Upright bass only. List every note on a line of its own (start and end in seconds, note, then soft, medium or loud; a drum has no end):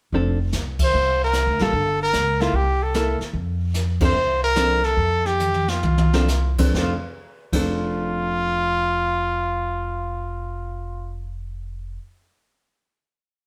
0.13 0.50 F1 medium
0.53 0.91 C2 medium
0.94 1.43 C2 medium
1.47 1.59 D2 medium
1.61 1.72 A1 medium
1.73 2.11 G1 medium
2.14 2.51 C#2 medium
2.53 3.16 C2 medium
3.21 muted upright bass stroke soft
3.33 4.10 F2 medium
4.14 4.93 C2 medium
4.97 5.80 F2 medium
5.83 6.71 C2 medium
6.74 6.92 F1 medium
7.53 11.96 F1 medium